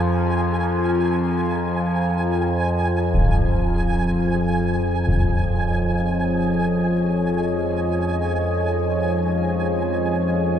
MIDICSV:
0, 0, Header, 1, 5, 480
1, 0, Start_track
1, 0, Tempo, 500000
1, 10168, End_track
2, 0, Start_track
2, 0, Title_t, "Synth texture"
2, 0, Program_c, 0, 99
2, 0, Note_on_c, 0, 80, 80
2, 10168, Note_off_c, 0, 80, 0
2, 10168, End_track
3, 0, Start_track
3, 0, Title_t, "Ambient pad"
3, 0, Program_c, 1, 92
3, 0, Note_on_c, 1, 65, 83
3, 0, Note_on_c, 1, 72, 68
3, 0, Note_on_c, 1, 77, 86
3, 0, Note_on_c, 1, 82, 79
3, 3011, Note_off_c, 1, 72, 0
3, 3036, Note_on_c, 1, 53, 61
3, 3757, Note_on_c, 1, 75, 66
3, 4361, Note_on_c, 1, 68, 82
3, 4371, Note_on_c, 1, 73, 75
3, 5675, Note_off_c, 1, 77, 0
3, 5919, Note_off_c, 1, 65, 0
3, 6276, Note_off_c, 1, 82, 0
3, 10168, Note_off_c, 1, 53, 0
3, 10168, Note_off_c, 1, 68, 0
3, 10168, Note_off_c, 1, 73, 0
3, 10168, Note_off_c, 1, 75, 0
3, 10168, End_track
4, 0, Start_track
4, 0, Title_t, "Synth drone"
4, 0, Program_c, 2, 95
4, 0, Note_on_c, 2, 41, 81
4, 0, Note_on_c, 2, 53, 83
4, 10168, Note_off_c, 2, 41, 0
4, 10168, Note_off_c, 2, 53, 0
4, 10168, End_track
5, 0, Start_track
5, 0, Title_t, "Drums"
5, 3012, Note_on_c, 9, 35, 69
5, 3108, Note_off_c, 9, 35, 0
5, 4871, Note_on_c, 9, 35, 56
5, 4967, Note_off_c, 9, 35, 0
5, 10168, End_track
0, 0, End_of_file